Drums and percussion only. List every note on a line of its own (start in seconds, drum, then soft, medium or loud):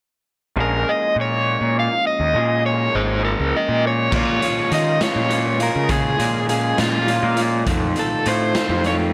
4.12 kick loud
4.12 crash medium
4.42 closed hi-hat medium
4.72 closed hi-hat medium
5.01 snare loud
5.01 closed hi-hat medium
5.30 closed hi-hat medium
5.60 closed hi-hat medium
5.89 kick loud
5.89 closed hi-hat medium
6.20 closed hi-hat medium
6.49 closed hi-hat medium
6.78 snare medium
6.78 closed hi-hat medium
7.08 closed hi-hat medium
7.37 closed hi-hat medium
7.67 kick loud
7.67 closed hi-hat medium
7.96 closed hi-hat medium
8.26 closed hi-hat medium
8.55 snare loud
8.55 closed hi-hat medium
8.84 closed hi-hat medium